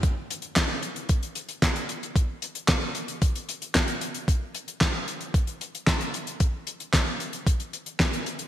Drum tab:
HH |x-xxx-xxxxxxxxxx|x-xxx-xxxxxxxxxx|x-xxx-xxxxxxxxxx|x-xxx-xxxxxxxxxx|
CP |----x-------x---|----x-------x---|----x-------x---|----x-------x---|
SD |----o-------o---|----o-------o---|----o-------o---|----o-------o---|
BD |o---o---o---o---|o---o---o---o---|o---o---o---o---|o---o---o---o---|